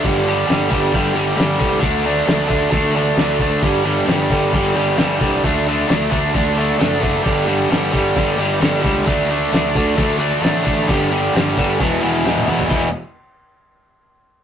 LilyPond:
<<
  \new Staff \with { instrumentName = "Overdriven electric guitar" } { \clef bass \time 4/4 \key g \major \tempo 4 = 133 <g, d g>8 <g, d g>8 <g, d g>8 <g, d g>8 <g, d g>8 <g, d g>8 <g, d g>8 <g, d g>8 | <d a d'>8 <d a d'>8 <d a d'>8 <d a d'>8 <d a d'>8 <d a d'>8 <d a d'>8 <d a d'>8 | <g, d g>8 <g, d g>8 <g, d g>8 <g, d g>8 <g, d g>8 <g, d g>8 <g, d g>8 <g, d g>8 | <d a d'>8 <d a d'>8 <d a d'>8 <d a d'>8 <d a d'>8 <d a d'>8 <d a d'>8 <d a d'>8 |
<g, d g>8 <g, d g>8 <g, d g>8 <g, d g>8 <g, d g>8 <g, d g>8 <g, d g>8 <g, d g>8 | <d a d'>8 <d a d'>8 <d a d'>8 <d a d'>8 <d a d'>8 <d a d'>8 <d a d'>8 <d a d'>8 | <g, d g>8 <g, d g>8 <g, d g>8 <g, d g>8 <e, b, e>8 <e, b, e>8 <e, b, e>8 <e, b, e>8 | <e, b, e>8 r2. r8 | }
  \new Staff \with { instrumentName = "Picked electric bass" } { \clef bass \time 4/4 \key g \major g,,4 g,,8 g,,8 g,,8 g,,8 g,,8 c,8 | d,4 d,8 d,8 d,4 d,4 | g,,4 g,,8 g,,8 g,,8 g,,8 g,,8 c,8 | d,4 d,8 d,8 d,4 fis,,4 |
g,,4 g,,8 g,,8 g,,8 g,,8 g,,8 cis,8 | d,4 d,8 d,8 d,4 a,,4 | g,,4 g,,8 g,,8 e,,8 e,,8 e,,8 e,8 | e,,8 r2. r8 | }
  \new DrumStaff \with { instrumentName = "Drums" } \drummode { \time 4/4 <cymc bd>4 <cymc sn>8 bd8 <cymc bd>4 <cymc sn>8 bd8 | <cymc bd>4 <cymc sn>8 bd8 <cymc bd>4 <cymc sn>8 bd8 | <cymc bd>4 <cymc sn>8 bd8 <cymc bd>4 <cymc sn>8 bd8 | <cymc bd>4 <cymc sn>8 bd8 <cymc bd>4 <cymc sn>8 bd8 |
<cymc bd>4 <cymc sn>8 bd8 <cymc bd>4 <cymc sn>8 bd8 | <cymc bd>4 <cymc sn>8 bd8 <cymc bd>4 <cymc sn>8 bd8 | <cymc bd>4 <cymc sn>8 bd8 <cymc bd>4 sn16 tommh16 toml16 tomfh16 | <cymc bd>4 r4 r4 r4 | }
>>